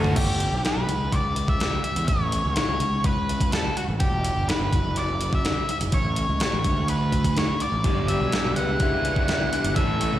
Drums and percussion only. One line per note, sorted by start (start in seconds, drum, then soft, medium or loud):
0.04 floor tom medium
0.16 kick loud
0.16 closed hi-hat medium
0.16 crash loud
0.40 closed hi-hat medium
0.65 snare loud
0.65 closed hi-hat medium
0.89 closed hi-hat medium
1.12 kick loud
1.12 closed hi-hat medium
1.36 closed hi-hat medium
1.48 kick medium
1.60 snare loud
1.60 closed hi-hat medium
1.84 closed hi-hat medium
1.96 closed hi-hat medium
2.08 kick loud
2.08 closed hi-hat medium
2.32 closed hi-hat medium
2.56 snare loud
2.56 closed hi-hat medium
2.80 closed hi-hat medium
3.04 kick loud
3.04 closed hi-hat medium
3.29 closed hi-hat medium
3.41 kick medium
3.41 closed hi-hat medium
3.52 snare loud
3.52 closed hi-hat medium
3.77 closed hi-hat medium
4.00 kick loud
4.00 closed hi-hat medium
4.24 closed hi-hat medium
4.49 snare loud
4.49 closed hi-hat medium
4.73 kick loud
4.73 closed hi-hat medium
4.96 snare soft
4.96 closed hi-hat medium
5.21 closed hi-hat medium
5.33 kick medium
5.45 snare loud
5.45 closed hi-hat medium
5.69 closed hi-hat medium
5.81 closed hi-hat medium
5.92 kick loud
5.92 closed hi-hat medium
6.16 closed hi-hat medium
6.40 snare loud
6.40 closed hi-hat medium
6.64 kick loud
6.64 closed hi-hat medium
6.88 closed hi-hat medium
7.12 kick medium
7.12 closed hi-hat medium
7.24 kick medium
7.24 closed hi-hat medium
7.37 snare loud
7.37 closed hi-hat medium
7.60 closed hi-hat medium
7.84 kick loud
7.84 closed hi-hat medium
8.08 closed hi-hat medium
8.32 snare loud
8.32 closed hi-hat medium
8.56 closed hi-hat medium
8.80 kick loud
8.80 snare soft
8.80 closed hi-hat medium
9.05 closed hi-hat medium
9.16 kick loud
9.28 snare loud
9.28 closed hi-hat medium
9.53 closed hi-hat medium
9.64 closed hi-hat medium
9.76 kick loud
9.76 closed hi-hat medium
10.01 closed hi-hat medium